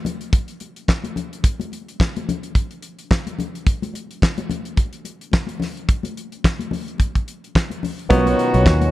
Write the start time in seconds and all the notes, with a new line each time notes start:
0.05 closed hi-hat, muted conga, high conga, low conga
0.21 closed hi-hat
0.33 kick, closed hi-hat
0.48 closed hi-hat
0.60 closed hi-hat, muted conga
0.76 closed hi-hat
0.88 kick, snare, clap, muted conga
1.04 closed hi-hat, high conga
1.16 closed hi-hat, muted conga, low conga
1.33 closed hi-hat
1.43 kick, closed hi-hat, muted conga
1.60 closed hi-hat, high conga
1.72 closed hi-hat, muted conga
1.88 closed hi-hat
2.00 kick, snare, clap, muted conga
2.16 closed hi-hat, high conga
2.29 closed hi-hat, muted conga, high conga, low conga
2.43 closed hi-hat
2.55 kick, closed hi-hat
2.71 closed hi-hat
2.82 closed hi-hat
2.99 closed hi-hat
3.11 kick, snare, clap
3.27 closed hi-hat, high conga
3.39 closed hi-hat, muted conga, low conga
3.55 closed hi-hat
3.66 kick, closed hi-hat, muted conga
3.82 closed hi-hat, high conga
3.94 closed hi-hat, muted conga
4.11 closed hi-hat
4.22 kick, snare, clap, muted conga
4.38 closed hi-hat, high conga
4.50 closed hi-hat, muted conga, high conga, low conga
4.65 closed hi-hat
4.76 kick, closed hi-hat, muted conga
4.93 closed hi-hat
5.05 closed hi-hat, muted conga
5.21 closed hi-hat
5.32 kick, snare, clap, muted conga
5.47 closed hi-hat, high conga
5.60 snare, open hi-hat, low conga
5.77 closed hi-hat
5.89 kick, closed hi-hat
6.03 closed hi-hat, high conga
6.17 closed hi-hat
6.32 closed hi-hat
6.44 kick, snare, clap
6.59 closed hi-hat, high conga
6.71 open hi-hat, muted conga, high conga, low conga
6.88 closed hi-hat
6.98 kick, closed hi-hat, muted conga
7.15 kick, closed hi-hat
7.28 closed hi-hat
7.44 closed hi-hat
7.55 kick, snare, clap
7.70 closed hi-hat, high conga
7.83 open hi-hat, muted conga, low conga
7.99 closed hi-hat
8.09 B1 B2 D#3 F#3 B3 C#4 D#4 F4 F#4 A#4 C#5, kick, closed hi-hat, muted conga
8.26 closed hi-hat, high conga
8.39 closed hi-hat
8.54 B1, closed hi-hat
8.66 D#2, kick, snare, clap, muted conga
8.81 closed hi-hat, high conga